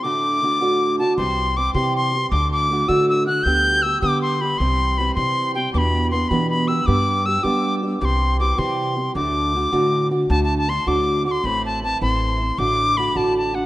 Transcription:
0.03 steel-string acoustic guitar D2 A2 D3 A3 D4 F#4, tin whistle D6
0.42 steel-string acoustic guitar D3 A3 D4 F#4
0.61 steel-string acoustic guitar D2 A2 D3 A3 D4 F#4
0.99 steel-string acoustic guitar D3 A3 D4 F#4, tin whistle A5
1.17 upright bass C2, steel-string acoustic guitar C3 E3 G3 C4 G4, tin whistle C6
1.56 steel-string acoustic guitar E3 G3 C4 G4, tin whistle D6
1.74 upright bass C3, steel-string acoustic guitar C3 E3 G3 C4 G4, tin whistle C6
1.96 tin whistle C6
2.14 steel-string acoustic guitar G3 C4 G4
2.31 steel-string acoustic guitar D2 A2 D3 A3 D4 F#4, upright bass D2, tin whistle D6
2.53 tin whistle D6
2.70 steel-string acoustic guitar D3 A3 D4 F#4
2.88 steel-string acoustic guitar D2 A2 D3 A3 D4 F#4, upright bass D3, tin whistle E6
3.09 tin whistle E6
3.27 steel-string acoustic guitar D3 A3 D4 F#4, tin whistle F#6
3.43 upright bass D2, steel-string acoustic guitar D3 G3 B3 G4, tin whistle G6
3.82 steel-string acoustic guitar D3 G3 B3 G4, tin whistle E6
4.02 upright bass D3, steel-string acoustic guitar D3 G3 B3 G4, tin whistle D6
4.22 tin whistle C6
4.41 steel-string acoustic guitar G3 B3 G4, tin whistle B5
4.58 upright bass C2, steel-string acoustic guitar C3 E3 G3 C4 G4, tin whistle C6
4.98 steel-string acoustic guitar E3 G3 C4 G4, tin whistle B5
5.15 upright bass C3, steel-string acoustic guitar C3 E3 G3 C4 G4, tin whistle C6
5.55 steel-string acoustic guitar G3 C4 G4, tin whistle G5
5.74 steel-string acoustic guitar E2 B2 E3 B3 D4 G4, upright bass E2, tin whistle D6
5.78 tin whistle B5
6.11 steel-string acoustic guitar E3 B3 D4 G4, tin whistle C6
6.29 steel-string acoustic guitar E2 B2 E3 B3 D4 G4, upright bass E3, tin whistle B5
6.50 tin whistle B5
6.68 steel-string acoustic guitar E3 B3 D4 G4, tin whistle E6
6.86 upright bass G2, steel-string acoustic guitar G3 B3 D4 G4, tin whistle D6
7.25 steel-string acoustic guitar G3 B3 D4 G4, tin whistle E6
7.43 upright bass G3, steel-string acoustic guitar G3 B3 D4 G4, tin whistle D6
7.82 steel-string acoustic guitar B3 D4 G4
8.00 upright bass C2, steel-string acoustic guitar C3 E3 G3 C4 G4, tin whistle D6
8.05 tin whistle C6
8.39 steel-string acoustic guitar E3 G3 C4 G4, tin whistle D6
8.57 upright bass C3, steel-string acoustic guitar C3 E3 G3 C4 G4, tin whistle C6
8.97 steel-string acoustic guitar G3 C4 G4
9.14 steel-string acoustic guitar D2 A2 D3 A3 D4 F#4, upright bass D2, tin whistle D6
9.54 steel-string acoustic guitar D3 A3 D4 F#4
9.72 steel-string acoustic guitar D2 A2 D3 A3 D4 F#4, upright bass D3
10.11 steel-string acoustic guitar D3 A3 D4 F#4
10.29 steel-string acoustic guitar D2 A2 D3 A3 D4 F#4, upright bass D2, tin whistle A5
10.44 tin whistle A5
10.58 tin whistle A5
10.68 steel-string acoustic guitar D3 A3 D4 F#4, tin whistle C6
10.87 upright bass D2, steel-string acoustic guitar D2 A2 D3 A3 D4 F#4, tin whistle D6
11.25 steel-string acoustic guitar D3 A3 D4 F#4, tin whistle D6
11.31 tin whistle C6
11.44 upright bass A1, steel-string acoustic guitar A2 E3 A3 C4 E4, tin whistle B5
11.66 tin whistle A5
11.83 steel-string acoustic guitar E3 A3 C4 E4, tin whistle A5
12.01 upright bass A1, steel-string acoustic guitar A2 E3 A3 C4 E4, tin whistle C6
12.40 steel-string acoustic guitar A3 C4 E4
12.58 upright bass A1, steel-string acoustic guitar A2 D3 A3 D4 F#4, tin whistle D6
12.97 steel-string acoustic guitar D3 A3 D4 F#4, tin whistle B5
13.15 upright bass A1, steel-string acoustic guitar A2 D3 A3 D4 F#4, tin whistle A5
13.38 tin whistle A5
13.54 steel-string acoustic guitar A3 D4 F#4, tin whistle F#5

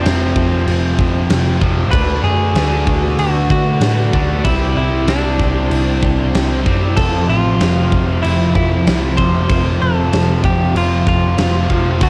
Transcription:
Already playing: distorted electric guitar F2 C3 F3, string machine F3 C5 E5 A5
0.02 picked electric bass F1, distorted electric guitar F2 C3, clean electric guitar C4, snare, crash
0.06 distorted electric guitar F3
0.35 picked electric bass F1, distorted electric guitar C3 F3, kick
0.67 picked electric bass F1, crash
0.97 picked electric bass F1, distorted electric guitar C3 F3, kick
1.29 picked electric bass F1, distorted electric guitar F2 C3 F3, snare, crash
1.61 picked electric bass F1, distorted electric guitar F2 C3 F3, kick
1.91 picked electric bass D2, distorted electric guitar D3 A3 D4, string machine F#4 B4 D5 F#5, clean electric guitar B4, kick, crash
2.23 picked electric bass F#2, distorted electric guitar A3 D4, clean electric guitar G#4
2.54 picked electric bass D2, distorted electric guitar D3 A3, snare, crash
2.59 distorted electric guitar D4
2.87 picked electric bass D2, distorted electric guitar A3 D4, kick
3.18 picked electric bass D2, clean electric guitar F#4, crash
3.50 picked electric bass D3, distorted electric guitar A3 D4, clean electric guitar F#4, kick
3.80 picked electric bass A2, distorted electric guitar D3 A3, snare, crash
3.85 distorted electric guitar D4
4.13 picked electric bass D2, distorted electric guitar D3 A3 D4, kick
4.44 picked electric bass C2, distorted electric guitar C3 G3 C4, clean electric guitar E4, string machine E4 C5 G5, kick, crash
4.49 distorted electric guitar C4
4.75 picked electric bass C2, distorted electric guitar C4, clean electric guitar E4
4.82 distorted electric guitar G3
5.06 picked electric bass C2, clean electric guitar D4, snare, crash
5.11 distorted electric guitar C3 G3 C4
5.39 picked electric bass C2, distorted electric guitar C4, kick, snare
5.44 distorted electric guitar G3
5.71 picked electric bass C2, crash
6.02 picked electric bass C2, distorted electric guitar C4, kick
6.07 distorted electric guitar G3
6.34 picked electric bass C2, distorted electric guitar C3 G3, snare, crash
6.39 distorted electric guitar C4
6.65 picked electric bass F#2, distorted electric guitar C3 G3 C4, kick
6.97 picked electric bass F1, distorted electric guitar F2 C3 F3, string machine F3 C5 E5 A5, overdriven electric guitar A3 C4, clean electric guitar A4, kick, crash
7.01 overdriven electric guitar F4
7.29 picked electric bass A1, distorted electric guitar C3 F3, clean electric guitar F4
7.59 picked electric bass F1, distorted electric guitar F2 C3 F3, snare, crash
7.92 picked electric bass F1, distorted electric guitar C3 F3, kick
8.23 picked electric bass F1, clean electric guitar E4, crash
8.55 picked electric bass F2, distorted electric guitar C3 F3, clean electric guitar E4, kick
8.86 picked electric bass C2, distorted electric guitar F2 C3 F3, snare, crash
9.17 picked electric bass F1, distorted electric guitar F2 C3 F3, clean electric guitar C5, kick
9.49 picked electric bass F1, distorted electric guitar F2 C3 F3, kick, crash
9.54 distorted electric guitar F3
9.82 picked electric bass F1, distorted electric guitar C3 F3, clean electric guitar A4
10.12 picked electric bass F1, distorted electric guitar F2 C3, snare, crash
10.16 distorted electric guitar F3
10.44 picked electric bass F1, distorted electric guitar C3 F3, clean electric guitar G4, kick
10.75 picked electric bass F1, clean electric guitar F4, crash
11.06 picked electric bass F1, distorted electric guitar F3, clean electric guitar F4, kick
11.10 distorted electric guitar C3
11.37 picked electric bass F1, distorted electric guitar F2 C3 F3, snare, crash
11.69 picked electric bass F1, distorted electric guitar F2 C3 F3, kick
12.00 picked electric bass D2, distorted electric guitar D3 A3 D4, string machine F#4 B4 D5, clean electric guitar F#4, overdriven electric guitar F#4, kick, crash

